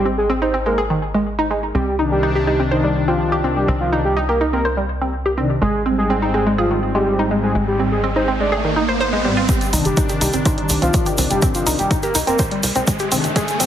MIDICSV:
0, 0, Header, 1, 7, 480
1, 0, Start_track
1, 0, Key_signature, -3, "minor"
1, 0, Tempo, 483871
1, 1733, Time_signature, 4, 2, 24, 8
1, 13552, End_track
2, 0, Start_track
2, 0, Title_t, "Analog synth lead"
2, 0, Program_c, 0, 81
2, 176, Note_on_c, 0, 68, 84
2, 311, Note_off_c, 0, 68, 0
2, 416, Note_on_c, 0, 72, 86
2, 551, Note_off_c, 0, 72, 0
2, 656, Note_on_c, 0, 70, 89
2, 791, Note_off_c, 0, 70, 0
2, 1731, Note_on_c, 0, 67, 91
2, 1939, Note_off_c, 0, 67, 0
2, 2095, Note_on_c, 0, 67, 93
2, 2300, Note_off_c, 0, 67, 0
2, 2453, Note_on_c, 0, 67, 87
2, 2592, Note_off_c, 0, 67, 0
2, 2692, Note_on_c, 0, 63, 91
2, 2899, Note_off_c, 0, 63, 0
2, 3055, Note_on_c, 0, 65, 88
2, 3329, Note_off_c, 0, 65, 0
2, 3533, Note_on_c, 0, 67, 85
2, 3670, Note_off_c, 0, 67, 0
2, 3773, Note_on_c, 0, 65, 85
2, 3910, Note_off_c, 0, 65, 0
2, 4015, Note_on_c, 0, 67, 87
2, 4150, Note_off_c, 0, 67, 0
2, 4253, Note_on_c, 0, 70, 86
2, 4390, Note_off_c, 0, 70, 0
2, 4494, Note_on_c, 0, 70, 92
2, 4630, Note_off_c, 0, 70, 0
2, 5569, Note_on_c, 0, 68, 98
2, 5778, Note_off_c, 0, 68, 0
2, 5932, Note_on_c, 0, 68, 93
2, 6139, Note_off_c, 0, 68, 0
2, 6290, Note_on_c, 0, 68, 86
2, 6430, Note_off_c, 0, 68, 0
2, 6531, Note_on_c, 0, 65, 93
2, 6739, Note_off_c, 0, 65, 0
2, 6892, Note_on_c, 0, 67, 87
2, 7168, Note_off_c, 0, 67, 0
2, 7373, Note_on_c, 0, 68, 85
2, 7510, Note_off_c, 0, 68, 0
2, 7614, Note_on_c, 0, 67, 88
2, 7750, Note_off_c, 0, 67, 0
2, 7854, Note_on_c, 0, 68, 90
2, 7990, Note_off_c, 0, 68, 0
2, 8095, Note_on_c, 0, 72, 85
2, 8231, Note_off_c, 0, 72, 0
2, 8333, Note_on_c, 0, 74, 90
2, 8469, Note_off_c, 0, 74, 0
2, 9411, Note_on_c, 0, 67, 96
2, 9618, Note_off_c, 0, 67, 0
2, 9775, Note_on_c, 0, 67, 94
2, 9980, Note_off_c, 0, 67, 0
2, 10132, Note_on_c, 0, 67, 92
2, 10272, Note_off_c, 0, 67, 0
2, 10371, Note_on_c, 0, 63, 90
2, 10578, Note_off_c, 0, 63, 0
2, 10734, Note_on_c, 0, 65, 97
2, 11009, Note_off_c, 0, 65, 0
2, 11212, Note_on_c, 0, 67, 92
2, 11349, Note_off_c, 0, 67, 0
2, 11454, Note_on_c, 0, 65, 88
2, 11590, Note_off_c, 0, 65, 0
2, 11694, Note_on_c, 0, 67, 92
2, 11830, Note_off_c, 0, 67, 0
2, 11933, Note_on_c, 0, 70, 88
2, 12070, Note_off_c, 0, 70, 0
2, 12173, Note_on_c, 0, 70, 91
2, 12309, Note_off_c, 0, 70, 0
2, 13251, Note_on_c, 0, 68, 99
2, 13458, Note_off_c, 0, 68, 0
2, 13552, End_track
3, 0, Start_track
3, 0, Title_t, "Synth arpeggio sound"
3, 0, Program_c, 1, 84
3, 54, Note_on_c, 1, 60, 74
3, 169, Note_off_c, 1, 60, 0
3, 294, Note_on_c, 1, 60, 89
3, 379, Note_off_c, 1, 60, 0
3, 415, Note_on_c, 1, 63, 76
3, 527, Note_off_c, 1, 63, 0
3, 534, Note_on_c, 1, 60, 75
3, 649, Note_off_c, 1, 60, 0
3, 655, Note_on_c, 1, 56, 76
3, 737, Note_off_c, 1, 56, 0
3, 773, Note_on_c, 1, 68, 74
3, 889, Note_off_c, 1, 68, 0
3, 894, Note_on_c, 1, 51, 67
3, 977, Note_off_c, 1, 51, 0
3, 1135, Note_on_c, 1, 56, 72
3, 1218, Note_off_c, 1, 56, 0
3, 1376, Note_on_c, 1, 63, 76
3, 1458, Note_off_c, 1, 63, 0
3, 1494, Note_on_c, 1, 56, 71
3, 1578, Note_off_c, 1, 56, 0
3, 1734, Note_on_c, 1, 60, 77
3, 1819, Note_off_c, 1, 60, 0
3, 1973, Note_on_c, 1, 63, 74
3, 2089, Note_off_c, 1, 63, 0
3, 2212, Note_on_c, 1, 63, 92
3, 2298, Note_off_c, 1, 63, 0
3, 2335, Note_on_c, 1, 67, 77
3, 2447, Note_off_c, 1, 67, 0
3, 2453, Note_on_c, 1, 63, 77
3, 2569, Note_off_c, 1, 63, 0
3, 2575, Note_on_c, 1, 60, 77
3, 2657, Note_off_c, 1, 60, 0
3, 2693, Note_on_c, 1, 72, 76
3, 2808, Note_off_c, 1, 72, 0
3, 2814, Note_on_c, 1, 55, 67
3, 2897, Note_off_c, 1, 55, 0
3, 3055, Note_on_c, 1, 60, 68
3, 3137, Note_off_c, 1, 60, 0
3, 3294, Note_on_c, 1, 67, 75
3, 3377, Note_off_c, 1, 67, 0
3, 3413, Note_on_c, 1, 60, 74
3, 3498, Note_off_c, 1, 60, 0
3, 3653, Note_on_c, 1, 60, 82
3, 3738, Note_off_c, 1, 60, 0
3, 3894, Note_on_c, 1, 63, 78
3, 4009, Note_off_c, 1, 63, 0
3, 4132, Note_on_c, 1, 63, 90
3, 4218, Note_off_c, 1, 63, 0
3, 4254, Note_on_c, 1, 67, 75
3, 4367, Note_off_c, 1, 67, 0
3, 4373, Note_on_c, 1, 63, 79
3, 4489, Note_off_c, 1, 63, 0
3, 4494, Note_on_c, 1, 60, 75
3, 4577, Note_off_c, 1, 60, 0
3, 4612, Note_on_c, 1, 72, 71
3, 4728, Note_off_c, 1, 72, 0
3, 4734, Note_on_c, 1, 55, 70
3, 4817, Note_off_c, 1, 55, 0
3, 4975, Note_on_c, 1, 60, 72
3, 5057, Note_off_c, 1, 60, 0
3, 5215, Note_on_c, 1, 67, 74
3, 5297, Note_off_c, 1, 67, 0
3, 5332, Note_on_c, 1, 60, 74
3, 5418, Note_off_c, 1, 60, 0
3, 5572, Note_on_c, 1, 56, 83
3, 5658, Note_off_c, 1, 56, 0
3, 5811, Note_on_c, 1, 60, 76
3, 5928, Note_off_c, 1, 60, 0
3, 6051, Note_on_c, 1, 60, 93
3, 6137, Note_off_c, 1, 60, 0
3, 6173, Note_on_c, 1, 63, 73
3, 6286, Note_off_c, 1, 63, 0
3, 6290, Note_on_c, 1, 60, 77
3, 6407, Note_off_c, 1, 60, 0
3, 6414, Note_on_c, 1, 56, 76
3, 6497, Note_off_c, 1, 56, 0
3, 6531, Note_on_c, 1, 68, 74
3, 6648, Note_off_c, 1, 68, 0
3, 6653, Note_on_c, 1, 51, 73
3, 6736, Note_off_c, 1, 51, 0
3, 6892, Note_on_c, 1, 56, 75
3, 6976, Note_off_c, 1, 56, 0
3, 7133, Note_on_c, 1, 63, 74
3, 7217, Note_off_c, 1, 63, 0
3, 7251, Note_on_c, 1, 56, 70
3, 7337, Note_off_c, 1, 56, 0
3, 7491, Note_on_c, 1, 56, 84
3, 7577, Note_off_c, 1, 56, 0
3, 7731, Note_on_c, 1, 60, 76
3, 7848, Note_off_c, 1, 60, 0
3, 7972, Note_on_c, 1, 60, 90
3, 8057, Note_off_c, 1, 60, 0
3, 8094, Note_on_c, 1, 63, 74
3, 8206, Note_off_c, 1, 63, 0
3, 8212, Note_on_c, 1, 60, 77
3, 8328, Note_off_c, 1, 60, 0
3, 8334, Note_on_c, 1, 56, 75
3, 8417, Note_off_c, 1, 56, 0
3, 8452, Note_on_c, 1, 68, 75
3, 8568, Note_off_c, 1, 68, 0
3, 8575, Note_on_c, 1, 51, 70
3, 8657, Note_off_c, 1, 51, 0
3, 8693, Note_on_c, 1, 63, 73
3, 8744, Note_off_c, 1, 63, 0
3, 8814, Note_on_c, 1, 72, 74
3, 8864, Note_off_c, 1, 72, 0
3, 8933, Note_on_c, 1, 72, 102
3, 9018, Note_off_c, 1, 72, 0
3, 9054, Note_on_c, 1, 56, 76
3, 9104, Note_off_c, 1, 56, 0
3, 9173, Note_on_c, 1, 55, 74
3, 9224, Note_off_c, 1, 55, 0
3, 9295, Note_on_c, 1, 65, 73
3, 9344, Note_off_c, 1, 65, 0
3, 9413, Note_on_c, 1, 60, 83
3, 9498, Note_off_c, 1, 60, 0
3, 9652, Note_on_c, 1, 63, 81
3, 9768, Note_off_c, 1, 63, 0
3, 9892, Note_on_c, 1, 63, 94
3, 9978, Note_off_c, 1, 63, 0
3, 10015, Note_on_c, 1, 67, 76
3, 10127, Note_off_c, 1, 67, 0
3, 10132, Note_on_c, 1, 63, 79
3, 10248, Note_off_c, 1, 63, 0
3, 10253, Note_on_c, 1, 60, 76
3, 10337, Note_off_c, 1, 60, 0
3, 10372, Note_on_c, 1, 72, 76
3, 10488, Note_off_c, 1, 72, 0
3, 10493, Note_on_c, 1, 55, 70
3, 10576, Note_off_c, 1, 55, 0
3, 10734, Note_on_c, 1, 60, 77
3, 10817, Note_off_c, 1, 60, 0
3, 10974, Note_on_c, 1, 67, 77
3, 11057, Note_off_c, 1, 67, 0
3, 11093, Note_on_c, 1, 60, 70
3, 11178, Note_off_c, 1, 60, 0
3, 11332, Note_on_c, 1, 60, 88
3, 11418, Note_off_c, 1, 60, 0
3, 11572, Note_on_c, 1, 63, 77
3, 11688, Note_off_c, 1, 63, 0
3, 11812, Note_on_c, 1, 63, 94
3, 11898, Note_off_c, 1, 63, 0
3, 11934, Note_on_c, 1, 67, 76
3, 12046, Note_off_c, 1, 67, 0
3, 12052, Note_on_c, 1, 63, 80
3, 12168, Note_off_c, 1, 63, 0
3, 12174, Note_on_c, 1, 60, 80
3, 12257, Note_off_c, 1, 60, 0
3, 12292, Note_on_c, 1, 72, 78
3, 12408, Note_off_c, 1, 72, 0
3, 12414, Note_on_c, 1, 55, 72
3, 12497, Note_off_c, 1, 55, 0
3, 12653, Note_on_c, 1, 60, 78
3, 12737, Note_off_c, 1, 60, 0
3, 12894, Note_on_c, 1, 67, 74
3, 12977, Note_off_c, 1, 67, 0
3, 13012, Note_on_c, 1, 60, 73
3, 13098, Note_off_c, 1, 60, 0
3, 13252, Note_on_c, 1, 56, 83
3, 13338, Note_off_c, 1, 56, 0
3, 13492, Note_on_c, 1, 60, 80
3, 13552, Note_off_c, 1, 60, 0
3, 13552, End_track
4, 0, Start_track
4, 0, Title_t, "Analog synth pad"
4, 0, Program_c, 2, 89
4, 1972, Note_on_c, 2, 48, 77
4, 1972, Note_on_c, 2, 51, 69
4, 1972, Note_on_c, 2, 62, 82
4, 3864, Note_off_c, 2, 48, 0
4, 3864, Note_off_c, 2, 51, 0
4, 3864, Note_off_c, 2, 62, 0
4, 3893, Note_on_c, 2, 48, 76
4, 3893, Note_on_c, 2, 51, 69
4, 3893, Note_on_c, 2, 62, 83
4, 3972, Note_off_c, 2, 48, 0
4, 3972, Note_off_c, 2, 51, 0
4, 3972, Note_off_c, 2, 62, 0
4, 5332, Note_on_c, 2, 48, 75
4, 5332, Note_on_c, 2, 51, 70
4, 5332, Note_on_c, 2, 62, 82
4, 5458, Note_off_c, 2, 51, 0
4, 5459, Note_off_c, 2, 48, 0
4, 5459, Note_off_c, 2, 62, 0
4, 5812, Note_on_c, 2, 44, 78
4, 5812, Note_on_c, 2, 55, 70
4, 5812, Note_on_c, 2, 60, 88
4, 7704, Note_off_c, 2, 44, 0
4, 7704, Note_off_c, 2, 55, 0
4, 7704, Note_off_c, 2, 60, 0
4, 7732, Note_on_c, 2, 44, 79
4, 7732, Note_on_c, 2, 55, 67
4, 7732, Note_on_c, 2, 60, 85
4, 7811, Note_off_c, 2, 44, 0
4, 7811, Note_off_c, 2, 55, 0
4, 7811, Note_off_c, 2, 60, 0
4, 9172, Note_on_c, 2, 44, 82
4, 9172, Note_on_c, 2, 55, 73
4, 9172, Note_on_c, 2, 60, 89
4, 9298, Note_off_c, 2, 44, 0
4, 9298, Note_off_c, 2, 55, 0
4, 9298, Note_off_c, 2, 60, 0
4, 9651, Note_on_c, 2, 48, 79
4, 9651, Note_on_c, 2, 51, 75
4, 9651, Note_on_c, 2, 62, 90
4, 11544, Note_off_c, 2, 48, 0
4, 11544, Note_off_c, 2, 51, 0
4, 11544, Note_off_c, 2, 62, 0
4, 11571, Note_on_c, 2, 48, 73
4, 11571, Note_on_c, 2, 51, 70
4, 11571, Note_on_c, 2, 62, 83
4, 11651, Note_off_c, 2, 48, 0
4, 11651, Note_off_c, 2, 51, 0
4, 11651, Note_off_c, 2, 62, 0
4, 13012, Note_on_c, 2, 48, 79
4, 13012, Note_on_c, 2, 51, 74
4, 13012, Note_on_c, 2, 62, 81
4, 13139, Note_off_c, 2, 48, 0
4, 13139, Note_off_c, 2, 51, 0
4, 13139, Note_off_c, 2, 62, 0
4, 13491, Note_on_c, 2, 44, 76
4, 13491, Note_on_c, 2, 55, 71
4, 13492, Note_on_c, 2, 60, 90
4, 13552, Note_off_c, 2, 44, 0
4, 13552, Note_off_c, 2, 55, 0
4, 13552, Note_off_c, 2, 60, 0
4, 13552, End_track
5, 0, Start_track
5, 0, Title_t, "Analog synth bass"
5, 0, Program_c, 3, 38
5, 0, Note_on_c, 3, 32, 82
5, 1709, Note_off_c, 3, 32, 0
5, 1733, Note_on_c, 3, 36, 81
5, 3629, Note_off_c, 3, 36, 0
5, 3652, Note_on_c, 3, 36, 79
5, 5549, Note_off_c, 3, 36, 0
5, 5572, Note_on_c, 3, 32, 86
5, 7469, Note_off_c, 3, 32, 0
5, 7493, Note_on_c, 3, 32, 81
5, 9389, Note_off_c, 3, 32, 0
5, 9653, Note_on_c, 3, 36, 89
5, 9727, Note_off_c, 3, 36, 0
5, 9774, Note_on_c, 3, 31, 78
5, 9846, Note_off_c, 3, 31, 0
5, 10132, Note_on_c, 3, 36, 89
5, 10206, Note_off_c, 3, 36, 0
5, 10255, Note_on_c, 3, 31, 76
5, 10326, Note_off_c, 3, 31, 0
5, 10613, Note_on_c, 3, 36, 94
5, 10687, Note_off_c, 3, 36, 0
5, 10735, Note_on_c, 3, 36, 86
5, 10806, Note_off_c, 3, 36, 0
5, 11093, Note_on_c, 3, 36, 97
5, 11167, Note_off_c, 3, 36, 0
5, 11215, Note_on_c, 3, 31, 79
5, 11286, Note_off_c, 3, 31, 0
5, 11572, Note_on_c, 3, 36, 97
5, 11646, Note_off_c, 3, 36, 0
5, 11694, Note_on_c, 3, 31, 74
5, 11766, Note_off_c, 3, 31, 0
5, 12052, Note_on_c, 3, 36, 95
5, 12126, Note_off_c, 3, 36, 0
5, 12174, Note_on_c, 3, 31, 78
5, 12246, Note_off_c, 3, 31, 0
5, 12532, Note_on_c, 3, 36, 100
5, 12606, Note_off_c, 3, 36, 0
5, 12654, Note_on_c, 3, 36, 79
5, 12726, Note_off_c, 3, 36, 0
5, 13012, Note_on_c, 3, 36, 96
5, 13086, Note_off_c, 3, 36, 0
5, 13134, Note_on_c, 3, 31, 82
5, 13206, Note_off_c, 3, 31, 0
5, 13493, Note_on_c, 3, 32, 93
5, 13552, Note_off_c, 3, 32, 0
5, 13552, End_track
6, 0, Start_track
6, 0, Title_t, "Riser"
6, 0, Program_c, 4, 103
6, 5572, Note_on_c, 4, 60, 73
6, 9412, Note_off_c, 4, 60, 0
6, 9412, Note_on_c, 4, 60, 76
6, 13552, Note_off_c, 4, 60, 0
6, 13552, End_track
7, 0, Start_track
7, 0, Title_t, "Drums"
7, 9412, Note_on_c, 9, 36, 112
7, 9412, Note_on_c, 9, 42, 78
7, 9413, Note_on_c, 9, 82, 50
7, 9511, Note_off_c, 9, 36, 0
7, 9511, Note_off_c, 9, 42, 0
7, 9513, Note_off_c, 9, 82, 0
7, 9534, Note_on_c, 9, 42, 45
7, 9540, Note_on_c, 9, 82, 33
7, 9633, Note_off_c, 9, 42, 0
7, 9639, Note_off_c, 9, 82, 0
7, 9652, Note_on_c, 9, 46, 97
7, 9657, Note_on_c, 9, 82, 87
7, 9751, Note_off_c, 9, 46, 0
7, 9756, Note_off_c, 9, 82, 0
7, 9771, Note_on_c, 9, 82, 38
7, 9773, Note_on_c, 9, 42, 44
7, 9870, Note_off_c, 9, 82, 0
7, 9872, Note_off_c, 9, 42, 0
7, 9889, Note_on_c, 9, 82, 49
7, 9892, Note_on_c, 9, 36, 118
7, 9892, Note_on_c, 9, 42, 78
7, 9988, Note_off_c, 9, 82, 0
7, 9991, Note_off_c, 9, 36, 0
7, 9991, Note_off_c, 9, 42, 0
7, 10009, Note_on_c, 9, 82, 35
7, 10013, Note_on_c, 9, 42, 47
7, 10108, Note_off_c, 9, 82, 0
7, 10113, Note_off_c, 9, 42, 0
7, 10130, Note_on_c, 9, 46, 102
7, 10137, Note_on_c, 9, 82, 86
7, 10230, Note_off_c, 9, 46, 0
7, 10236, Note_off_c, 9, 82, 0
7, 10244, Note_on_c, 9, 82, 38
7, 10253, Note_on_c, 9, 42, 46
7, 10344, Note_off_c, 9, 82, 0
7, 10352, Note_off_c, 9, 42, 0
7, 10371, Note_on_c, 9, 42, 77
7, 10372, Note_on_c, 9, 36, 115
7, 10374, Note_on_c, 9, 82, 53
7, 10470, Note_off_c, 9, 42, 0
7, 10471, Note_off_c, 9, 36, 0
7, 10473, Note_off_c, 9, 82, 0
7, 10493, Note_on_c, 9, 42, 44
7, 10592, Note_off_c, 9, 42, 0
7, 10605, Note_on_c, 9, 82, 98
7, 10612, Note_on_c, 9, 46, 102
7, 10704, Note_off_c, 9, 82, 0
7, 10711, Note_off_c, 9, 46, 0
7, 10735, Note_on_c, 9, 42, 42
7, 10738, Note_on_c, 9, 82, 37
7, 10834, Note_off_c, 9, 42, 0
7, 10837, Note_off_c, 9, 82, 0
7, 10846, Note_on_c, 9, 82, 43
7, 10852, Note_on_c, 9, 36, 110
7, 10852, Note_on_c, 9, 42, 80
7, 10945, Note_off_c, 9, 82, 0
7, 10951, Note_off_c, 9, 36, 0
7, 10952, Note_off_c, 9, 42, 0
7, 10971, Note_on_c, 9, 82, 33
7, 10974, Note_on_c, 9, 42, 48
7, 11070, Note_off_c, 9, 82, 0
7, 11074, Note_off_c, 9, 42, 0
7, 11086, Note_on_c, 9, 82, 88
7, 11093, Note_on_c, 9, 46, 103
7, 11185, Note_off_c, 9, 82, 0
7, 11192, Note_off_c, 9, 46, 0
7, 11212, Note_on_c, 9, 82, 39
7, 11215, Note_on_c, 9, 42, 45
7, 11311, Note_off_c, 9, 82, 0
7, 11314, Note_off_c, 9, 42, 0
7, 11328, Note_on_c, 9, 82, 54
7, 11332, Note_on_c, 9, 36, 113
7, 11332, Note_on_c, 9, 42, 75
7, 11428, Note_off_c, 9, 82, 0
7, 11431, Note_off_c, 9, 36, 0
7, 11431, Note_off_c, 9, 42, 0
7, 11452, Note_on_c, 9, 82, 38
7, 11455, Note_on_c, 9, 42, 43
7, 11552, Note_off_c, 9, 82, 0
7, 11554, Note_off_c, 9, 42, 0
7, 11572, Note_on_c, 9, 46, 99
7, 11576, Note_on_c, 9, 82, 101
7, 11671, Note_off_c, 9, 46, 0
7, 11675, Note_off_c, 9, 82, 0
7, 11691, Note_on_c, 9, 82, 36
7, 11695, Note_on_c, 9, 42, 41
7, 11791, Note_off_c, 9, 82, 0
7, 11794, Note_off_c, 9, 42, 0
7, 11812, Note_on_c, 9, 36, 121
7, 11813, Note_on_c, 9, 42, 75
7, 11817, Note_on_c, 9, 82, 50
7, 11911, Note_off_c, 9, 36, 0
7, 11912, Note_off_c, 9, 42, 0
7, 11916, Note_off_c, 9, 82, 0
7, 11930, Note_on_c, 9, 82, 34
7, 11934, Note_on_c, 9, 42, 45
7, 12030, Note_off_c, 9, 82, 0
7, 12034, Note_off_c, 9, 42, 0
7, 12050, Note_on_c, 9, 82, 94
7, 12052, Note_on_c, 9, 46, 109
7, 12149, Note_off_c, 9, 82, 0
7, 12151, Note_off_c, 9, 46, 0
7, 12174, Note_on_c, 9, 42, 44
7, 12177, Note_on_c, 9, 82, 40
7, 12274, Note_off_c, 9, 42, 0
7, 12276, Note_off_c, 9, 82, 0
7, 12287, Note_on_c, 9, 82, 60
7, 12292, Note_on_c, 9, 36, 114
7, 12292, Note_on_c, 9, 42, 76
7, 12386, Note_off_c, 9, 82, 0
7, 12391, Note_off_c, 9, 36, 0
7, 12391, Note_off_c, 9, 42, 0
7, 12414, Note_on_c, 9, 42, 46
7, 12513, Note_off_c, 9, 42, 0
7, 12531, Note_on_c, 9, 46, 108
7, 12531, Note_on_c, 9, 82, 89
7, 12631, Note_off_c, 9, 46, 0
7, 12631, Note_off_c, 9, 82, 0
7, 12650, Note_on_c, 9, 82, 38
7, 12654, Note_on_c, 9, 42, 42
7, 12749, Note_off_c, 9, 82, 0
7, 12753, Note_off_c, 9, 42, 0
7, 12768, Note_on_c, 9, 82, 54
7, 12772, Note_on_c, 9, 36, 107
7, 12772, Note_on_c, 9, 42, 79
7, 12867, Note_off_c, 9, 82, 0
7, 12871, Note_off_c, 9, 36, 0
7, 12871, Note_off_c, 9, 42, 0
7, 12885, Note_on_c, 9, 82, 35
7, 12895, Note_on_c, 9, 42, 44
7, 12985, Note_off_c, 9, 82, 0
7, 12994, Note_off_c, 9, 42, 0
7, 13011, Note_on_c, 9, 46, 103
7, 13013, Note_on_c, 9, 82, 87
7, 13110, Note_off_c, 9, 46, 0
7, 13112, Note_off_c, 9, 82, 0
7, 13134, Note_on_c, 9, 42, 42
7, 13134, Note_on_c, 9, 82, 40
7, 13233, Note_off_c, 9, 42, 0
7, 13234, Note_off_c, 9, 82, 0
7, 13251, Note_on_c, 9, 42, 78
7, 13252, Note_on_c, 9, 36, 105
7, 13256, Note_on_c, 9, 82, 54
7, 13351, Note_off_c, 9, 36, 0
7, 13351, Note_off_c, 9, 42, 0
7, 13355, Note_off_c, 9, 82, 0
7, 13373, Note_on_c, 9, 42, 45
7, 13373, Note_on_c, 9, 82, 39
7, 13472, Note_off_c, 9, 42, 0
7, 13472, Note_off_c, 9, 82, 0
7, 13491, Note_on_c, 9, 46, 109
7, 13493, Note_on_c, 9, 82, 89
7, 13552, Note_off_c, 9, 46, 0
7, 13552, Note_off_c, 9, 82, 0
7, 13552, End_track
0, 0, End_of_file